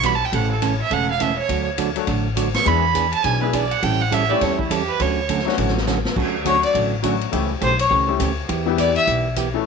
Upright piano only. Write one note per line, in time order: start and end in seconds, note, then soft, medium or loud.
1.95 2.06 F#3 medium
1.95 2.06 A3 medium
1.95 2.06 D4 medium
1.95 2.07 F#4 medium
1.95 2.07 A4 medium
2.65 2.81 G#3 medium
2.65 2.81 B3 medium
2.65 2.82 D4 medium
2.65 2.82 E4 medium
2.65 2.82 G#4 medium
3.41 3.52 G#3 medium
3.41 3.52 B3 medium
3.41 3.52 D4 medium
3.41 3.52 E4 medium
3.41 3.52 G#4 medium
4.29 4.68 G3 medium
4.29 4.68 A3 medium
4.29 4.68 C#4 medium
4.29 4.68 E4 medium
4.29 4.68 G4 medium
5.45 5.84 F#3 medium
5.45 5.84 A3 medium
5.45 5.84 C#4 medium
5.45 5.85 D4 medium
5.45 5.85 F#4 medium
6.45 6.88 F#3 medium
6.45 6.88 A3 medium
6.45 6.89 C#4 medium
6.45 6.89 D4 medium
6.45 6.89 F#4 medium
7.02 7.32 F#3 medium
7.02 7.30 A3 medium
7.02 7.31 C#4 medium
7.02 7.33 D4 medium
7.02 7.33 F#4 medium
7.31 7.48 G3 medium
7.31 7.48 A3 medium
7.31 7.48 C#4 medium
7.31 7.48 E4 medium
7.31 7.49 G4 medium
8.07 8.18 G3 medium
8.07 8.19 A3 medium
8.07 8.19 C#4 medium
8.07 8.19 E4 medium
8.07 8.19 G4 medium
8.66 9.05 E3 medium
8.66 9.05 G3 medium
8.66 9.05 B3 medium
8.66 9.05 E4 medium
8.66 9.06 G4 loud
9.54 9.65 E3 medium
9.54 9.65 A3 medium
9.54 9.65 C#4 medium
9.54 9.65 E4 medium
9.54 9.65 A4 medium